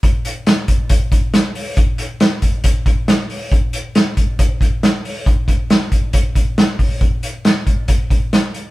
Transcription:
\new DrumStaff \with { instrumentName = "Drums" } \drummode { \time 4/4 \tempo 4 = 138 <hh bd>8 hh8 <hh sn>8 <hh bd>8 <hh bd>8 <hh bd>8 <hh sn>8 hho8 | <hh bd>8 hh8 <hh sn>8 <hh bd>8 <hh bd>8 <hh bd>8 <hh sn>8 hho8 | <hh bd>8 hh8 <hh sn>8 <hh bd>8 <hh bd>8 <hh bd>8 <hh sn>8 hho8 | <hh bd>8 <hh bd>8 <hh sn>8 <hh bd>8 <hh bd>8 <hh bd>8 <hh sn>8 <hho bd>8 |
<hh bd>8 hh8 <hh sn>8 <hh bd>8 <hh bd>8 <hh bd>8 <hh sn>8 hh8 | }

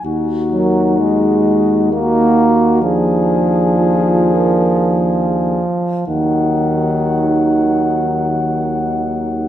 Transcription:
<<
  \new Staff \with { instrumentName = "French horn section" } { \time 3/4 \key ees \minor \tempo 4 = 54 ges'8 bes'8 aes'4 ges'4 | aes'4 f'8 bes'8 aes'8 r8 | ees'2. | }
  \new Staff \with { instrumentName = "Flugelhorn" } { \time 3/4 \key ees \minor ges'2 ges'4 | aes'2~ aes'8 r8 | ges''2. | }
  \new Staff \with { instrumentName = "Euphonium" } { \time 3/4 \key ees \minor ees'2 ees'4 | d'2~ d'8 r8 | ges2. | }
  \new Staff \with { instrumentName = "Trombone" } { \clef bass \time 3/4 \key ees \minor r8 ges8 aes4 bes4 | f2. | ees2. | }
  \new Staff \with { instrumentName = "Tuba" } { \clef bass \time 3/4 \key ees \minor ees,2.~ | ees,2~ ees,8 r8 | ees,2. | }
>>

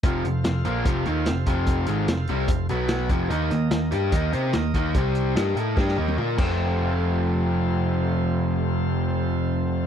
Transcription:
<<
  \new Staff \with { instrumentName = "Tonewheel organ" } { \time 4/4 \key f \mixolydian \tempo 4 = 146 <f' a' c'' f''>1~ | <f' a' c'' f''>2~ <f' a' c'' f''>8 <b fis' b' fis''>4 r8 | <bes ees' bes' ees''>1 | <g c' g' c''>4 <bes ees' bes' ees''>2~ <bes ees' bes' ees''>8 <c' f' a' c''>8~ |
<c' f' a' c''>1~ | <c' f' a' c''>1 | }
  \new Staff \with { instrumentName = "Overdriven electric guitar" } { \clef bass \time 4/4 \key f \mixolydian <f, c f>8 <f, c>8 <f, c>8 <bes, f bes>8 <f, c f>8 <ees bes ees'>8 <f, c>8 <f, c f>8~ | <f, c f>8 <aes, ees aes>8 <f, c>8 <c g c'>8 <f, c>8 <b, fis b>4 <f, c f>8 | <ees bes ees'>8 <ees bes>8 <ees bes>8 <g d' g'>8 <ees bes ees'>8 <c' g' c''>8 <ees bes>8 <ees bes ees'>8 | <c g c'>4 <g d' g'>8 <a e' a'>8 <g d' g'>8 <ees bes ees'>8 <bes f' bes'>8 <f, c f a c'>8~ |
<f, c f a c'>1~ | <f, c f a c'>1 | }
  \new Staff \with { instrumentName = "Picked electric bass" } { \clef bass \time 4/4 \key f \mixolydian f,,8 f,,8 f,,8 bes,,8 f,,8 ees,8 f,,8 f,,8~ | f,,8 aes,,8 f,,8 c,8 f,,8 b,,4 f,,8 | ees,8 ees,8 ees,8 g,8 ees,8 c8 ees,8 ees,8 | c,4 g,8 a,8 g,8 ees,8 bes,8 f,,8~ |
f,,1~ | f,,1 | }
  \new DrumStaff \with { instrumentName = "Drums" } \drummode { \time 4/4 <hh bd>8 hh8 <hh sn>8 hh8 <hh bd>8 hh8 <hh sn>8 <hh bd>8 | <hh bd>8 hh8 <hh sn>8 hh8 <hh bd>8 hh8 <hh sn>8 <hh bd>8 | hh8 <hh sn>8 <hh sn>8 hh8 <hh bd>8 hh8 <hh sn>8 <hh bd>8 | <hh bd>8 hh8 <hh sn>8 hh8 <bd sn>16 sn8 tommh16 toml8 <cymc bd>8 |
r4 r4 r4 r4 | r4 r4 r4 r4 | }
>>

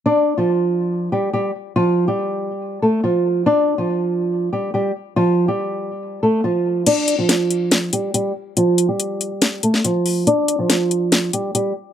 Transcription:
<<
  \new Staff \with { instrumentName = "Nylon-string guitar" } { \time 4/4 \key d \minor \tempo 4 = 141 <d' d''>8. <f f'>4.~ <f f'>16 <g g'>8 <g g'>8 r8 | <f f'>8. <g g'>4.~ <g g'>16 <a a'>8 <f f'>4 | <d' d''>8. <f f'>4.~ <f f'>16 <g g'>8 <g g'>8 r8 | <f f'>8. <g g'>4.~ <g g'>16 <a a'>8 <f f'>4 |
<d' d''>8. <f f'>4.~ <f f'>16 <g g'>8 <g g'>8 r8 | <f f'>8. <g g'>4.~ <g g'>16 <a a'>8 <f f'>4 | <d' d''>8. <f f'>4.~ <f f'>16 <g g'>8 <g g'>8 r8 | }
  \new DrumStaff \with { instrumentName = "Drums" } \drummode { \time 4/4 r4 r4 r4 r4 | r4 r4 r4 r4 | r4 r4 r4 r4 | r4 r4 r4 r4 |
<cymc hh>8 hh8 <hh sn>8 hh8 <hh sn>8 hh8 hh4 | hh8 hh8 hh8 hh8 <hh sn>8 hh16 sn16 hh8 hho8 | hh8 hh8 <hh sn>8 hh8 <hh sn>8 hh8 hh4 | }
>>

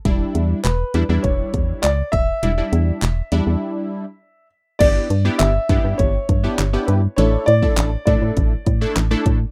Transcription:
<<
  \new Staff \with { instrumentName = "Grand piano" } { \time 4/4 \key e \dorian \tempo 4 = 101 r4 b'4 cis''4 d''8 e''8~ | e''2.~ e''8 r8 | d''4 e''4 cis''4. b'8 | cis''8 d''4 d''2 r8 | }
  \new Staff \with { instrumentName = "Analog polysynth" } { \time 4/4 \key e \dorian <g d' e'>4 r8 <g d' e'>16 <g d' e'>4~ <g d' e'>16 r4 | <g d' e'>16 <g d' e'>8. r8 <g d' e'>4~ <g d' e'>16 r4 r16 | <b d' e' g'>8 r16 <b d' e' g'>8 r16 <b d' e' g'>8. r8 <b d' e' g'>16 r16 <b d' e' g'>8 r16 | <a d' e' a'>8 r16 <a d' e' a'>8 r16 <a d' e' a'>8. r8 <a d' e' a'>16 r16 <a d' e' a'>8 r16 | }
  \new Staff \with { instrumentName = "FM bass" } { \clef bass \time 4/4 \key e \dorian e,,8 e,8 e,,8 e,16 e,16 e,,8 e,8 cis,8 dis,,8 | e,,8 e,8 e,,8 e,16 e,16 r2 | g,,8 g,8 g,,8 g,16 g,16 g,,8 g,8 g,,8 g,8 | a,,8 a,8 a,,8 a,16 a,16 a,,8 a,8 a,,8 a,8 | }
  \new DrumStaff \with { instrumentName = "Drums" } \drummode { \time 4/4 <hh bd>8 hh8 <hc hh>8 hh8 <hh bd>8 <hh bd>8 <hc hh>8 <hh bd>8 | hh8 hh8 <hc hh>8 hh8 r4 r4 | <cymc hh bd>8 hh8 <hc hh>8 <hh bd>8 <hh bd>8 <hh bd>8 <hc hh>8 hh8 | hh8 hh16 bd16 <hc hh>8 <hh bd>8 <hh bd>8 <hh bd>8 <hc hh>8 <hh bd>8 | }
>>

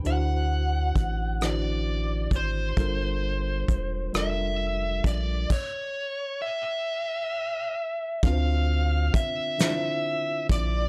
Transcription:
<<
  \new Staff \with { instrumentName = "Lead electric guitar" } { \time 6/8 \key g \mixolydian \tempo 4. = 44 fis''4. d''4 c''8~ | c''4. e''4 d''8 | cis''4 e''2 | \key d \minor f''4 e''4. d''8 | }
  \new Staff \with { instrumentName = "Tine electric piano" } { \time 6/8 \key g \mixolydian <d d' e' fis' c''>4 r8 <d d' e' fis' c''>4 r8 | <g d' f' a' bes'>4 r8 <g d' f' a' bes'>4 r8 | r2. | \key d \minor <d c' d' f' b' c''>4 r8 <d d' e' f' c''>4 r8 | }
  \new Staff \with { instrumentName = "Analog synth bass" } { \clef bass \time 6/8 \key g \mixolydian d,4 a,,4. gis,,8 | g,,4 e,,8 f,,4 bes,,8 | r2. | \key d \minor d,4 bes,,8 r4 bes,,8 | }
  \new DrumStaff \with { instrumentName = "Drums" } \drummode { \time 6/8 hh4 <hh bd>8 <hh ss>4 <hh bd>8 | <hh bd>4 <hh bd>8 <hh ss>4 <hh bd>8 | <cymc bd>4. r4. | <hh bd>4 <hh bd>8 <hh sn>4 <hh bd>8 | }
>>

